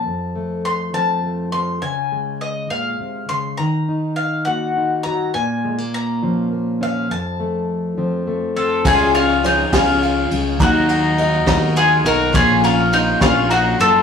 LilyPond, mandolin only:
\new Staff \with { instrumentName = "Mandolin" } { \time 6/8 \key des \major \tempo 4. = 68 a''4 c'''8 a''4 c'''8 | aes''4 ees''8 f''4 c'''8 | bes''4 f''8 ges''4 bes''8 | aes''4 bes''4. f''8 |
a''2~ a''8 a'8 | aes'8 f'8 ees'8 f'4 r8 | ges'2 aes'8 bes'8 | aes'8 f'8 ees'8 f'8 ges'8 a'8 | }